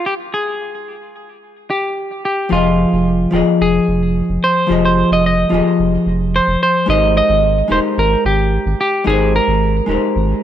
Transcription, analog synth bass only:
2.52 2.85 F1 loud
2.93 3.26 F1 medium
3.33 3.43 D#1 medium
3.61 3.79 F1 medium
3.88 4.22 F1 medium
4.29 4.38 F1 medium
4.70 5.04 F1 loud
5.11 5.44 F1 medium
5.52 5.61 D#1 medium
5.79 5.97 F1 medium
6.06 6.40 F1 loud
6.48 6.56 F1 medium
6.88 7.22 G#1 loud
7.29 7.63 G#1 loud
7.71 7.79 D#1 medium
7.98 8.16 G#1 medium
8.25 8.58 G#1 medium
8.66 8.74 G#1 medium
9.07 9.40 G#1 loud
9.48 9.81 G#1 medium
9.88 9.97 D#1 medium
10.16 10.34 G#1 medium

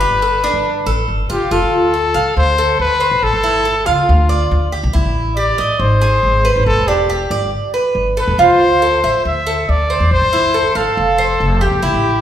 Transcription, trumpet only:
0.00 1.08 B4 medium
1.31 1.54 G4 medium
1.52 2.37 A4 loud
2.38 2.77 C5 loud
2.80 3.25 B4 loud
3.23 3.88 A4 loud
3.87 4.73 F4 medium
5.37 5.81 D5 medium
5.80 6.66 C5 medium
6.66 6.89 A4 loud
6.88 7.53 G4 medium
8.19 8.38 B4 medium
8.41 9.22 C5 loud
9.26 9.71 E5 medium
9.69 10.12 D5 medium
10.13 10.78 C5 loud
10.77 11.65 A4 medium
11.63 12.21 G4 medium

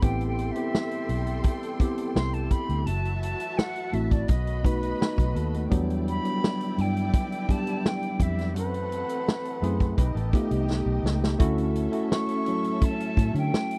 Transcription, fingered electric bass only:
0.03 0.50 A1 loud
1.09 1.40 B1 medium
2.16 2.47 C2 medium
2.69 2.85 D2 medium
2.86 3.34 F#1 loud
3.93 4.25 A1 medium
4.29 4.92 B1 loud
5.18 5.34 B1 medium
5.35 5.67 D#2 medium
5.71 6.18 E2 loud
6.78 7.09 G2 medium
8.20 8.56 F2 medium
8.56 9.03 F#2 loud
9.62 9.93 F#2 medium
9.98 10.13 B1 loud
10.15 10.31 A1 loud
10.51 10.82 C2 medium
10.86 11.02 B1 loud
11.03 11.35 C#2 medium
11.40 11.87 D2 loud
13.17 13.33 A2 loud
13.34 13.50 D3 loud

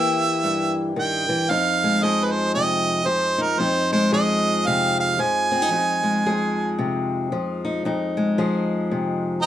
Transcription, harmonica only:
0.00 0.82 E5 medium
0.99 1.51 G5 medium
1.50 2.05 F5 loud
2.03 2.26 D#5 medium
2.24 2.34 B4 medium
2.32 2.54 C5 medium
2.55 3.08 D#5 medium
3.07 3.43 C5 medium
3.42 3.61 A#4 medium
3.60 3.92 C5 medium
3.92 4.12 C5 medium
4.13 4.68 D#5 loud
4.67 4.99 F5 loud
5.00 5.22 F5 medium
5.21 6.80 G#5 loud
9.42 9.46 D#5 medium
9.42 9.46 G5 medium
9.42 9.46 A#5 loud

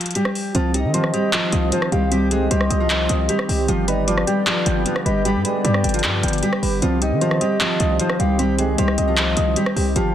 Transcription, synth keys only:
0.55 1.53 C4 loud
0.74 1.72 G4 medium
0.94 1.92 C5 medium
1.14 1.52 D#5 medium
1.53 2.51 D#5 medium
1.92 2.30 G4 medium
2.12 3.10 C4 loud
2.31 3.29 G4 medium
2.51 3.49 C5 medium
2.70 3.08 D#5 medium
3.10 3.68 D#5 medium
3.49 3.67 G4 medium
3.68 4.66 G4 medium
3.88 4.86 B4 medium
4.08 5.06 D5 medium
4.27 4.65 G5 medium
4.66 5.64 G5 medium
5.06 5.44 B4 medium
5.25 6.23 G4 loud
5.45 6.43 B4 medium
5.64 6.63 D5 loud
5.84 6.22 G5 medium
6.23 6.82 G5 medium
6.63 6.82 B4 medium
6.82 7.80 C4 loud
7.02 8.00 G4 medium
7.21 8.19 C5 medium
7.41 7.79 D#5 medium
7.80 8.78 D#5 medium
8.20 8.57 G4 medium
8.39 9.37 C4 loud
8.59 9.57 G4 medium
8.78 9.76 C5 medium
8.98 9.36 D#5 medium
9.37 9.96 D#5 medium
9.76 9.95 G4 medium
9.96 10.15 G4 loud

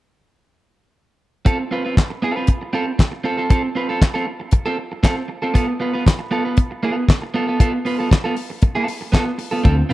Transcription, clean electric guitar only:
1.45 1.63 C4 medium
1.45 1.59 F4 medium
1.45 1.58 A4 medium
1.59 muted clean electric guitar stroke soft
1.71 1.85 C4 medium
1.71 1.84 F4 medium
1.71 1.83 B4 medium
1.85 1.95 C4 soft
1.85 1.96 F4 soft
1.85 1.97 B4 medium
1.96 muted clean electric guitar stroke soft
2.10 muted clean electric guitar stroke soft
2.22 2.36 C4 medium
2.22 2.36 F4 medium
2.22 2.36 A4 medium
2.36 2.49 C4 soft
2.36 2.49 F4 medium
2.36 2.49 B4 medium
2.62 muted clean electric guitar stroke soft
2.73 2.91 C4 medium
2.73 2.87 F4 medium
2.73 2.85 A4 medium
2.87 muted clean electric guitar stroke soft
2.98 muted clean electric guitar stroke soft
3.12 muted clean electric guitar stroke soft
3.24 3.38 C4 medium
3.24 3.37 F4 medium
3.24 3.36 A4 medium
3.37 3.48 C4 medium
3.37 3.49 F4 medium
3.37 3.50 A4 medium
3.50 3.68 C4 medium
3.50 3.63 F4 medium
3.50 3.62 A4 medium
3.63 muted clean electric guitar stroke soft
3.75 3.89 C4 medium
3.75 3.89 F4 medium
3.75 3.89 B4 medium
3.89 4.00 C4 soft
3.89 4.01 F4 soft
3.89 4.01 A4 medium
4.01 muted clean electric guitar stroke soft
4.14 4.25 C4 medium
4.14 4.26 F4 medium
4.14 4.27 A4 medium
4.27 muted clean electric guitar stroke soft
4.40 muted clean electric guitar stroke soft
4.52 muted clean electric guitar stroke soft
4.66 4.77 C4 medium
4.66 4.77 F4 medium
4.66 4.78 A4 medium
4.78 muted clean electric guitar stroke soft
4.92 muted clean electric guitar stroke soft
5.03 5.21 C4 medium
5.03 5.17 F4 medium
5.03 5.15 A4 medium
5.17 muted clean electric guitar stroke soft
5.28 muted clean electric guitar stroke soft
5.42 5.53 C4 soft
5.42 5.54 F4 soft
5.42 5.54 A4 medium
5.54 5.72 B3 medium
5.54 5.68 F4 medium
5.54 5.66 A4 medium
5.68 muted clean electric guitar stroke soft
5.80 5.94 B3 medium
5.80 5.93 F4 medium
5.80 5.92 B4 medium
5.93 6.04 B3 soft
5.93 6.05 F4 medium
5.93 6.06 B4 medium
6.05 muted clean electric guitar stroke soft
6.19 muted clean electric guitar stroke soft
6.31 6.45 B3 medium
6.31 6.44 F4 medium
6.31 6.45 A4 medium
6.45 6.59 B3 soft
6.45 6.58 F4 soft
6.45 6.58 B4 medium
6.71 muted clean electric guitar stroke soft
6.83 7.04 B3 medium
6.83 6.97 F4 medium
6.83 6.95 A4 medium
6.97 muted clean electric guitar stroke soft
7.08 muted clean electric guitar stroke soft
7.22 muted clean electric guitar stroke soft
7.34 7.48 B3 medium
7.34 7.47 F4 medium
7.34 7.46 A4 medium
7.47 7.59 B3 medium
7.47 7.59 F4 medium
7.47 7.60 A4 medium
7.60 7.78 B3 medium
7.60 7.74 F4 medium
7.60 7.72 A4 medium
7.73 muted clean electric guitar stroke soft
7.85 7.99 B3 medium
7.85 7.99 F4 medium
7.85 7.98 B4 medium
7.99 8.10 B3 soft
7.99 8.10 F4 soft
7.99 8.11 A4 medium
8.11 muted clean electric guitar stroke soft
8.24 8.35 B3 medium
8.24 8.36 F4 medium
8.24 8.36 A4 medium
8.36 muted clean electric guitar stroke soft
8.50 muted clean electric guitar stroke soft
8.62 muted clean electric guitar stroke soft
8.75 8.86 B3 medium
8.75 8.87 F4 medium
8.75 8.87 A4 medium
8.88 muted clean electric guitar stroke soft
9.01 muted clean electric guitar stroke soft
9.12 9.31 B3 medium
9.12 9.26 F4 medium
9.12 9.25 A4 medium
9.26 muted clean electric guitar stroke medium
9.38 muted clean electric guitar stroke soft
9.51 9.63 B3 soft
9.51 9.63 F4 medium
9.51 9.64 A4 medium
9.64 9.82 C4 medium
9.64 9.77 F4 medium
9.64 9.76 A4 medium
9.77 muted clean electric guitar stroke soft
9.89 9.93 C4 medium
9.89 9.93 F4 medium

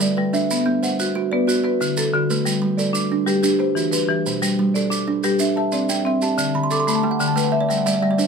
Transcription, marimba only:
0.00 0.17 G3 medium
0.00 0.50 D5 medium
0.00 0.17 E5 medium
0.18 0.50 G3 medium
0.51 0.83 B3 medium
0.83 1.32 F#5 medium
1.00 1.32 F#4 medium
1.32 1.48 B3 medium
1.32 1.63 B4 medium
1.48 1.97 F#4 medium
1.64 2.13 B4 medium
1.81 2.12 D3 medium
1.97 2.46 A4 medium
2.13 2.46 D3 medium
2.45 2.78 G3 medium
2.77 3.27 D5 medium
2.93 3.27 D4 medium
3.26 3.43 G3 medium
3.26 3.42 G4 medium
3.43 3.92 G4 medium
3.59 4.09 C5 medium
3.75 4.07 E3 medium
3.92 4.41 B4 medium
4.08 4.42 E3 medium
4.42 4.75 G3 medium
4.74 5.24 D5 medium
4.90 5.23 D4 medium
5.24 5.40 G3 medium
5.24 5.56 G4 medium
5.40 5.89 E5 medium
5.56 6.06 A5 medium
5.72 6.04 C4 medium
5.89 6.38 G5 medium
6.05 6.38 C4 medium
6.38 6.71 D3 medium
6.71 7.20 A4 medium
6.87 7.20 A3 medium
7.20 7.37 D3 medium
7.36 7.86 B4 medium
7.53 8.02 E5 medium
7.70 8.01 G3 medium
7.86 8.27 D5 medium
8.02 8.27 G3 medium

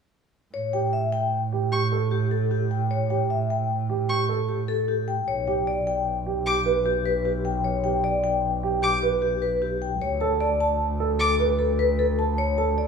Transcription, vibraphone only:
0.54 0.80 C#5 medium
0.73 0.99 G5 soft
0.93 1.19 E5 medium
1.12 1.39 G5 medium
1.72 1.98 G4 medium
2.11 2.37 G4 medium
2.31 2.57 A4 medium
2.51 2.77 G4 medium
2.71 2.97 G5 medium
2.91 3.17 C#5 medium
3.10 3.36 G5 medium
3.30 3.56 E5 soft
3.50 3.76 G5 medium
4.10 4.35 G4 medium
4.49 4.74 G4 medium
4.68 4.94 A4 medium
4.88 5.14 G4 soft
5.08 5.34 G5 medium
5.28 5.53 C#5 medium
5.48 5.73 G5 medium
5.67 5.93 D5 medium
5.87 6.13 G5 medium
6.47 6.72 G4 medium
6.86 7.11 G4 medium
7.06 7.31 B4 medium
7.25 7.51 G4 medium
7.45 7.70 G5 medium
7.65 7.90 C#5 medium
7.84 8.10 G5 medium
8.04 8.30 D5 medium
8.24 8.49 G5 medium
8.82 9.08 G4 medium
9.22 9.48 G4 medium
9.42 9.68 B4 medium
9.62 9.88 G4 medium
9.82 10.07 G5 medium
10.02 10.27 C#5 medium
10.21 10.47 A5 medium
10.41 10.66 D5 medium
10.61 10.86 A5 medium
11.19 11.45 A4 medium
11.59 11.85 A4 medium
11.79 12.05 B4 medium
11.99 12.24 A4 medium
12.19 12.44 A5 medium
12.38 12.64 C#5 medium
12.58 12.84 A5 medium
12.78 12.88 D5 medium

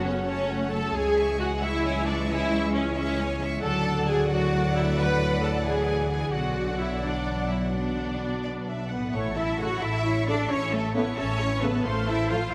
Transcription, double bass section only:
0.00 0.90 F#1 medium
0.95 3.60 C#2 medium
3.64 6.30 D2 medium
6.34 8.89 B1 medium
9.13 9.73 A1 medium
9.82 10.42 A1 medium
10.50 11.10 A1 medium
11.18 11.77 A1 medium
11.85 12.44 A1 medium

